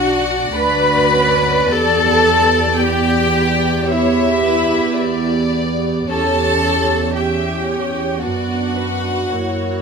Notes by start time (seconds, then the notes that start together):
Already playing: B1 D4 F#4 D5 F#5
0.54 D2 D4 F#4 B4 B5
1.14 C#4
1.70 E2 B3 G4 A4 A5
2.78 B3 G4 G5
3.87 B3 E4 G4 C#5 E5
4.43 B4
4.99 D5
6.10 E2 C#4 G4 A4 C#5 A5
7.16 C#4 G4 E5 G5
7.69 C#5
8.20 F#2 B3 D4 F#4 D5 F#5
8.76 B4
9.33 F#2 A#3 E4 C#5